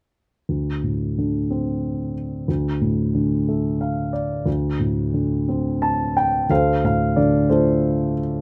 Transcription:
0.49 D2
0.83 A2
1.18 D3
1.50 C4
2.48 D2
2.81 A2
3.15 D3
3.49 A3
3.81 F5
4.13 D5
4.46 D2
4.79 A2
5.14 D3
5.48 C4
5.82 A5
6.17 G5
6.50 D2 A4 C5 F5
6.84 A2 F5
7.16 D3 D5
7.50 A3 F4 A4 C5

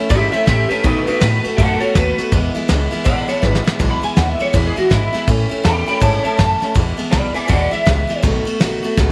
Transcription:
0.09 G#2 A2 E3 A3 C#4 E4 G4 E5, kick, ride
0.31 A3 C#4 E4 G4 E5, muted upright bass stroke, ride
0.46 A2 E3 A3 C#4 E4 G4 E5, kick, snare, ride
0.69 A3 C#4 E4 G4 B4, muted upright bass stroke, ride
0.84 B2 D#3 A3 B3 D#4 F#4 B4, kick, ride
1.07 A3 B3 D#4 F#4 B4, muted upright bass stroke, ride
1.21 A2 D#3 A3 B3 F#4 B4, snare, ride
1.44 A3 B3 F#4, muted upright bass stroke, ride
1.57 F#2 B2 D#3 A3 B3 F#4 A4 F#5, kick, ride
1.80 A3 B3 F#4 A4 C#5, muted upright bass stroke, ride
1.95 D#2 D#3 A3 B3 F#4 B4, kick, snare, ride
2.18 A3 B3 F#4, muted upright bass stroke, snare, ride
2.32 E2 B2 E3 G#3 B3 E4, kick, ride
2.55 E3 G#3 B3 E4, muted upright bass stroke, ride
2.68 C#2 E3 G#3 B3 E4, snare, ride
2.91 E3 G#3 B3 E4, muted upright bass stroke, ride
3.04 B1 E2 B2 E3 G#3 B3 E4 D5 F#5, kick, ride
3.28 E3 G#3 B3 E4 C#5, muted upright bass stroke, ride
3.42 G#1 E3 G#3 B3 E4 B4, kick, snare
3.55 snare
3.64 E3 G#3 B3 E4, snare
3.79 B1 E2 B2 E3 G#3 B3 E4, kick, ride
3.91 B5
4.02 E3 G#3 B3 E4 G#5, muted upright bass stroke, ride
4.16 D#2 E3 G#3 B3 E4 F#5, snare, ride
4.29 E5
4.39 E3 G#3 B3 E4 C#5, ride
4.53 E2 B2 E3 G#3 B3 E4 B4, kick, ride
4.67 G#4
4.76 E3 G#3 B3 E4 F#4, muted upright bass stroke, ride
4.90 G#2 E3 G#3 B3 E4, kick, snare, ride
5.13 E3 G#3 B3 E4, muted upright bass stroke, snare, ride
5.27 A2 E3 A3 C#4 E4, kick, ride
5.49 A3 C#4 E4, muted upright bass stroke, ride
5.63 E2 E3 A3 C#4 E4 G5 B5, snare, ride
5.86 A3 C#4 E4 G5 B5, muted upright bass stroke, ride
6.00 G#2 A2 E3 A3 C#4 E4 C#5 A5, kick, ride
6.23 A3 C#4 E4 C#5 A5, muted upright bass stroke, ride
6.37 F#2 E3 A3 C#4 E4 A5, kick, snare, ride
6.60 A3 C#4 E4, muted upright bass stroke, snare, ride
6.74 E2 B2 E3 G#3 B3 E4, kick, ride
6.97 E3 G#3 B3 E4, ride
7.11 B1 E3 G#3 B3 E4 D5 B5, snare, ride
7.34 E3 G#3 B3 E4 B4 G#5, muted upright bass stroke, ride
7.48 D#2 E2 B2 E3 G#3 B3 E4 D5 F#5, kick, ride
7.71 E3 G#3 B3 E4 E5, muted upright bass stroke, ride
7.85 C#2 E3 G#3 B3 E4, kick, snare, ride
8.07 E3 G#3 B3 E4, snare, ride
8.22 B1 B2 D#3 A3 B3 F#4, kick, ride
8.45 A3 B3 F#4, muted upright bass stroke, ride
8.60 A1 D#3 A3 B3 F#4, snare, ride
8.83 A3 B3 F#4, muted upright bass stroke, ride
8.97 C#2 B2 D#3 A3 B3 F#4, kick, snare

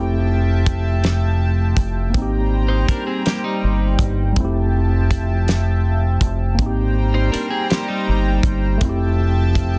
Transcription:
Already playing: F1 F3 A3 C4 E4 E5 G5 A5
0.00 G4
0.66 kick, closed hi-hat
1.04 snare, closed hi-hat
1.77 F1, kick, closed hi-hat
2.10 A#3 C4
2.14 G#1 G3 D#4 C5 G5 A#5, kick, closed hi-hat
2.22 G4
2.68 D#4 C5
2.89 D4 A#4, kick, closed hi-hat
3.06 C4 G#4
3.26 A#3 G4, snare, closed hi-hat
3.44 G3 D#4
3.64 G1
3.99 G1, kick, closed hi-hat
4.33 G3, kick, closed hi-hat
4.37 F3 A3 C4 E4 E5 G5 A5
4.44 G4
5.11 kick, closed hi-hat
5.48 snare, closed hi-hat
6.21 F1, kick, closed hi-hat
6.55 A#3 C4 A#5
6.59 G#1 G3 D#4 C5 G5, kick, closed hi-hat
6.66 G4
7.14 D#4 C5
7.32 D4 A#4, closed hi-hat
7.50 C4 G#4
7.70 A#3 G4, snare, closed hi-hat
7.88 G3 D#4
8.09 G1
8.43 G1, kick, closed hi-hat
8.78 A3 C4, kick, closed hi-hat
8.82 F1 F3 E4 E5 G5 A5
8.89 G4
9.55 kick, closed hi-hat

